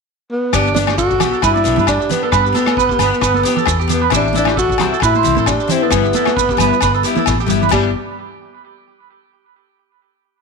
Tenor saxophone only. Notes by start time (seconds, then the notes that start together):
0.31 B3
0.54 D4
0.74 D4
0.97 F#4
1.44 E4
1.89 D4
2.11 B3
2.24 B3
3.93 B3
4.16 D4
4.38 D4
4.58 F#4
5.04 E4
5.47 D4
5.71 C4
5.82 B3
7.72 G3